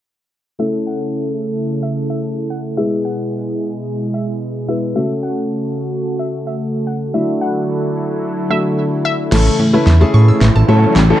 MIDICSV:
0, 0, Header, 1, 8, 480
1, 0, Start_track
1, 0, Key_signature, 3, "major"
1, 0, Tempo, 545455
1, 523, Time_signature, 4, 2, 24, 8
1, 9856, End_track
2, 0, Start_track
2, 0, Title_t, "Synth arpeggio sound"
2, 0, Program_c, 0, 84
2, 8203, Note_on_c, 0, 52, 85
2, 8277, Note_off_c, 0, 52, 0
2, 8331, Note_on_c, 0, 57, 80
2, 8397, Note_off_c, 0, 57, 0
2, 8444, Note_on_c, 0, 61, 72
2, 8518, Note_off_c, 0, 61, 0
2, 8571, Note_on_c, 0, 64, 92
2, 8637, Note_off_c, 0, 64, 0
2, 8684, Note_on_c, 0, 76, 75
2, 8758, Note_off_c, 0, 76, 0
2, 8810, Note_on_c, 0, 81, 86
2, 8876, Note_off_c, 0, 81, 0
2, 8923, Note_on_c, 0, 85, 98
2, 8998, Note_off_c, 0, 85, 0
2, 9050, Note_on_c, 0, 88, 89
2, 9116, Note_off_c, 0, 88, 0
2, 9162, Note_on_c, 0, 85, 88
2, 9237, Note_off_c, 0, 85, 0
2, 9289, Note_on_c, 0, 81, 97
2, 9356, Note_off_c, 0, 81, 0
2, 9404, Note_on_c, 0, 76, 81
2, 9478, Note_off_c, 0, 76, 0
2, 9642, Note_on_c, 0, 61, 87
2, 9717, Note_off_c, 0, 61, 0
2, 9771, Note_on_c, 0, 57, 75
2, 9837, Note_off_c, 0, 57, 0
2, 9856, End_track
3, 0, Start_track
3, 0, Title_t, "Synth pluck"
3, 0, Program_c, 1, 84
3, 524, Note_on_c, 1, 76, 92
3, 680, Note_off_c, 1, 76, 0
3, 764, Note_on_c, 1, 78, 73
3, 1215, Note_off_c, 1, 78, 0
3, 1609, Note_on_c, 1, 76, 73
3, 1683, Note_off_c, 1, 76, 0
3, 1848, Note_on_c, 1, 76, 73
3, 1922, Note_off_c, 1, 76, 0
3, 2203, Note_on_c, 1, 78, 77
3, 2286, Note_off_c, 1, 78, 0
3, 2441, Note_on_c, 1, 76, 103
3, 2598, Note_off_c, 1, 76, 0
3, 2683, Note_on_c, 1, 78, 77
3, 3134, Note_off_c, 1, 78, 0
3, 3643, Note_on_c, 1, 76, 70
3, 3800, Note_off_c, 1, 76, 0
3, 4123, Note_on_c, 1, 76, 82
3, 4206, Note_off_c, 1, 76, 0
3, 4363, Note_on_c, 1, 76, 94
3, 4520, Note_off_c, 1, 76, 0
3, 4603, Note_on_c, 1, 78, 76
3, 5054, Note_off_c, 1, 78, 0
3, 5450, Note_on_c, 1, 76, 70
3, 5524, Note_off_c, 1, 76, 0
3, 5693, Note_on_c, 1, 76, 74
3, 5766, Note_off_c, 1, 76, 0
3, 6045, Note_on_c, 1, 78, 79
3, 6128, Note_off_c, 1, 78, 0
3, 6284, Note_on_c, 1, 76, 105
3, 6440, Note_off_c, 1, 76, 0
3, 6525, Note_on_c, 1, 78, 74
3, 6975, Note_off_c, 1, 78, 0
3, 7485, Note_on_c, 1, 76, 69
3, 7641, Note_off_c, 1, 76, 0
3, 7964, Note_on_c, 1, 76, 81
3, 8047, Note_off_c, 1, 76, 0
3, 9856, End_track
4, 0, Start_track
4, 0, Title_t, "Grand piano"
4, 0, Program_c, 2, 0
4, 517, Note_on_c, 2, 57, 59
4, 521, Note_on_c, 2, 61, 55
4, 524, Note_on_c, 2, 64, 56
4, 527, Note_on_c, 2, 69, 65
4, 2405, Note_off_c, 2, 57, 0
4, 2407, Note_off_c, 2, 61, 0
4, 2408, Note_off_c, 2, 64, 0
4, 2410, Note_off_c, 2, 69, 0
4, 2438, Note_on_c, 2, 56, 61
4, 2441, Note_on_c, 2, 59, 56
4, 2444, Note_on_c, 2, 64, 56
4, 2447, Note_on_c, 2, 68, 66
4, 4087, Note_off_c, 2, 56, 0
4, 4088, Note_off_c, 2, 59, 0
4, 4090, Note_off_c, 2, 64, 0
4, 4091, Note_off_c, 2, 68, 0
4, 4121, Note_on_c, 2, 56, 49
4, 4123, Note_on_c, 2, 59, 43
4, 4123, Note_on_c, 2, 64, 43
4, 4124, Note_on_c, 2, 71, 51
4, 4359, Note_on_c, 2, 57, 61
4, 4361, Note_on_c, 2, 61, 55
4, 4362, Note_off_c, 2, 56, 0
4, 4363, Note_off_c, 2, 59, 0
4, 4363, Note_off_c, 2, 64, 0
4, 4363, Note_off_c, 2, 71, 0
4, 4364, Note_on_c, 2, 66, 57
4, 4368, Note_on_c, 2, 69, 69
4, 6246, Note_off_c, 2, 57, 0
4, 6247, Note_off_c, 2, 61, 0
4, 6248, Note_off_c, 2, 66, 0
4, 6250, Note_off_c, 2, 69, 0
4, 6279, Note_on_c, 2, 57, 65
4, 6282, Note_on_c, 2, 62, 59
4, 6284, Note_on_c, 2, 64, 57
4, 6289, Note_on_c, 2, 66, 66
4, 7457, Note_off_c, 2, 57, 0
4, 7459, Note_off_c, 2, 62, 0
4, 7459, Note_off_c, 2, 64, 0
4, 7462, Note_off_c, 2, 66, 0
4, 7480, Note_on_c, 2, 57, 47
4, 7481, Note_on_c, 2, 62, 42
4, 7482, Note_on_c, 2, 64, 42
4, 7484, Note_on_c, 2, 66, 52
4, 8185, Note_off_c, 2, 57, 0
4, 8188, Note_off_c, 2, 64, 0
4, 8198, Note_on_c, 2, 57, 83
4, 8199, Note_on_c, 2, 61, 76
4, 8201, Note_on_c, 2, 64, 79
4, 8202, Note_off_c, 2, 62, 0
4, 8203, Note_off_c, 2, 66, 0
4, 8203, Note_on_c, 2, 69, 92
4, 8403, Note_off_c, 2, 57, 0
4, 8404, Note_off_c, 2, 61, 0
4, 8405, Note_off_c, 2, 64, 0
4, 8406, Note_off_c, 2, 69, 0
4, 8565, Note_on_c, 2, 57, 82
4, 8565, Note_on_c, 2, 61, 75
4, 8567, Note_on_c, 2, 64, 76
4, 8568, Note_on_c, 2, 71, 91
4, 8695, Note_off_c, 2, 57, 0
4, 8695, Note_off_c, 2, 61, 0
4, 8696, Note_off_c, 2, 64, 0
4, 8696, Note_off_c, 2, 71, 0
4, 8804, Note_on_c, 2, 57, 87
4, 8805, Note_on_c, 2, 61, 75
4, 8807, Note_on_c, 2, 64, 75
4, 8808, Note_on_c, 2, 68, 96
4, 9135, Note_off_c, 2, 57, 0
4, 9136, Note_off_c, 2, 61, 0
4, 9137, Note_off_c, 2, 64, 0
4, 9137, Note_off_c, 2, 68, 0
4, 9400, Note_on_c, 2, 57, 82
4, 9401, Note_on_c, 2, 61, 76
4, 9403, Note_on_c, 2, 64, 79
4, 9403, Note_on_c, 2, 69, 91
4, 9604, Note_off_c, 2, 57, 0
4, 9605, Note_off_c, 2, 61, 0
4, 9605, Note_off_c, 2, 64, 0
4, 9606, Note_off_c, 2, 69, 0
4, 9767, Note_on_c, 2, 57, 87
4, 9769, Note_on_c, 2, 61, 77
4, 9769, Note_on_c, 2, 64, 81
4, 9770, Note_on_c, 2, 69, 97
4, 9856, Note_off_c, 2, 57, 0
4, 9856, Note_off_c, 2, 61, 0
4, 9856, Note_off_c, 2, 64, 0
4, 9856, Note_off_c, 2, 69, 0
4, 9856, End_track
5, 0, Start_track
5, 0, Title_t, "Supersaw synth"
5, 0, Program_c, 3, 81
5, 524, Note_on_c, 3, 57, 63
5, 524, Note_on_c, 3, 69, 74
5, 525, Note_on_c, 3, 64, 63
5, 526, Note_on_c, 3, 49, 71
5, 2424, Note_off_c, 3, 57, 0
5, 2424, Note_off_c, 3, 69, 0
5, 2425, Note_off_c, 3, 49, 0
5, 2442, Note_on_c, 3, 47, 70
5, 2442, Note_on_c, 3, 56, 64
5, 2443, Note_on_c, 3, 68, 78
5, 4329, Note_off_c, 3, 64, 0
5, 4343, Note_off_c, 3, 47, 0
5, 4343, Note_off_c, 3, 56, 0
5, 4344, Note_off_c, 3, 68, 0
5, 4362, Note_on_c, 3, 49, 70
5, 4362, Note_on_c, 3, 69, 80
5, 4363, Note_on_c, 3, 57, 67
5, 4363, Note_on_c, 3, 66, 67
5, 6263, Note_off_c, 3, 49, 0
5, 6263, Note_off_c, 3, 57, 0
5, 6264, Note_off_c, 3, 66, 0
5, 6283, Note_on_c, 3, 50, 69
5, 6284, Note_on_c, 3, 54, 68
5, 6284, Note_on_c, 3, 64, 63
5, 8167, Note_off_c, 3, 69, 0
5, 8184, Note_off_c, 3, 50, 0
5, 8184, Note_off_c, 3, 54, 0
5, 8184, Note_off_c, 3, 64, 0
5, 8203, Note_on_c, 3, 52, 65
5, 8204, Note_on_c, 3, 49, 69
5, 8204, Note_on_c, 3, 57, 68
5, 8204, Note_on_c, 3, 64, 80
5, 9856, Note_off_c, 3, 49, 0
5, 9856, Note_off_c, 3, 52, 0
5, 9856, Note_off_c, 3, 57, 0
5, 9856, Note_off_c, 3, 64, 0
5, 9856, End_track
6, 0, Start_track
6, 0, Title_t, "Analog synth bass"
6, 0, Program_c, 4, 38
6, 8202, Note_on_c, 4, 33, 104
6, 8358, Note_off_c, 4, 33, 0
6, 8443, Note_on_c, 4, 45, 93
6, 8599, Note_off_c, 4, 45, 0
6, 8683, Note_on_c, 4, 40, 92
6, 8839, Note_off_c, 4, 40, 0
6, 8923, Note_on_c, 4, 45, 87
6, 9079, Note_off_c, 4, 45, 0
6, 9163, Note_on_c, 4, 33, 97
6, 9246, Note_off_c, 4, 33, 0
6, 9289, Note_on_c, 4, 33, 97
6, 9363, Note_off_c, 4, 33, 0
6, 9402, Note_on_c, 4, 45, 99
6, 9558, Note_off_c, 4, 45, 0
6, 9641, Note_on_c, 4, 33, 106
6, 9798, Note_off_c, 4, 33, 0
6, 9856, End_track
7, 0, Start_track
7, 0, Title_t, "Riser"
7, 0, Program_c, 5, 103
7, 8201, Note_on_c, 5, 60, 81
7, 9856, Note_off_c, 5, 60, 0
7, 9856, End_track
8, 0, Start_track
8, 0, Title_t, "Drums"
8, 8203, Note_on_c, 9, 38, 52
8, 8203, Note_on_c, 9, 49, 90
8, 8291, Note_off_c, 9, 38, 0
8, 8291, Note_off_c, 9, 49, 0
8, 8683, Note_on_c, 9, 38, 51
8, 8771, Note_off_c, 9, 38, 0
8, 9163, Note_on_c, 9, 38, 55
8, 9251, Note_off_c, 9, 38, 0
8, 9643, Note_on_c, 9, 38, 53
8, 9731, Note_off_c, 9, 38, 0
8, 9856, End_track
0, 0, End_of_file